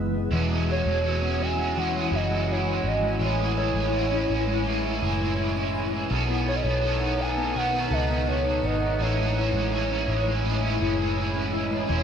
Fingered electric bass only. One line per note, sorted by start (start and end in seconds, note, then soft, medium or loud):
0.00 0.30 F#1 medium
0.31 0.83 E1 medium
0.85 2.08 E1 medium
2.12 2.81 F#1 medium
2.84 3.19 G#1 medium
3.20 3.72 A1 medium
3.74 4.26 A1 medium
4.30 4.98 A1 medium
5.02 6.07 F#1 medium
6.11 6.62 B1 medium
6.64 7.87 B1 medium
7.91 8.60 C#2 medium
8.63 8.98 G#1 loud
9.00 9.51 A1 loud
9.54 10.05 A1 medium
10.08 10.77 A1 loud
10.80 11.85 F#1 medium
11.90 12.03 E1 loud